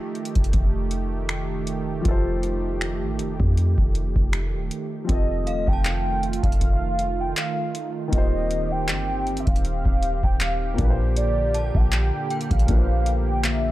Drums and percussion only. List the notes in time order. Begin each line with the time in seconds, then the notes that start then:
0.15 closed hi-hat
0.25 closed hi-hat
0.35 kick, closed hi-hat
0.44 closed hi-hat
0.53 kick, closed hi-hat
0.91 closed hi-hat
1.29 finger snap, closed hi-hat
1.67 closed hi-hat
2.05 kick, closed hi-hat
2.43 closed hi-hat
2.81 finger snap, closed hi-hat
3.19 closed hi-hat
3.40 kick
3.57 closed hi-hat
3.78 kick
3.95 closed hi-hat
4.16 kick
4.33 finger snap, closed hi-hat
4.71 closed hi-hat
5.09 kick, closed hi-hat
5.47 closed hi-hat
5.67 kick
5.85 clap, closed hi-hat
6.23 closed hi-hat
6.33 closed hi-hat
6.43 kick, closed hi-hat
6.52 closed hi-hat
6.61 kick, closed hi-hat
6.99 closed hi-hat
7.37 clap, closed hi-hat
7.75 closed hi-hat
8.13 kick, closed hi-hat
8.51 closed hi-hat
8.88 clap, closed hi-hat
9.27 closed hi-hat
9.37 closed hi-hat
9.47 kick, closed hi-hat
9.56 closed hi-hat
9.65 closed hi-hat
9.85 kick
10.03 closed hi-hat
10.23 kick
10.40 clap, closed hi-hat
10.78 kick, closed hi-hat
11.17 closed hi-hat
11.54 closed hi-hat
11.75 kick
11.92 clap, closed hi-hat
12.30 closed hi-hat
12.41 closed hi-hat
12.51 kick, closed hi-hat
12.59 closed hi-hat
12.68 kick, closed hi-hat
13.06 closed hi-hat
13.44 clap, closed hi-hat